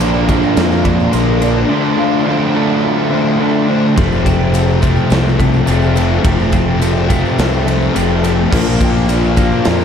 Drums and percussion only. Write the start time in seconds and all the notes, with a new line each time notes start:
0.01 ride
0.13 tambourine
0.28 kick, ride, tambourine
0.43 tambourine
0.57 snare, ride, tambourine
0.71 snare, tambourine
0.84 kick, ride, tambourine
1.00 tambourine
1.13 ride, tambourine
1.42 ride, tambourine
3.98 kick, ride, tambourine
4.12 tambourine
4.26 kick, ride, tambourine
4.54 ride, tambourine
4.68 tambourine
4.82 kick, ride, tambourine
4.96 tambourine
5.10 snare, ride, tambourine
5.25 snare, tambourine
5.39 kick, ride, tambourine
5.53 tambourine
5.67 ride, tambourine
5.82 tambourine
5.96 ride, tambourine
6.25 kick, ride, tambourine
6.39 tambourine
6.52 kick, ride, tambourine
6.82 ride, tambourine
6.96 tambourine
7.10 kick, ride, tambourine
7.25 tambourine
7.38 snare, ride, tambourine
7.53 tambourine
7.67 ride, tambourine
7.81 tambourine
7.96 ride, tambourine
8.11 tambourine
8.24 ride, tambourine
8.53 kick, crash, tambourine
8.67 tambourine
8.80 kick, ride, tambourine
9.09 ride, tambourine
9.23 tambourine
9.36 kick, ride, tambourine
9.51 tambourine
9.65 snare, ride, tambourine
9.79 snare, tambourine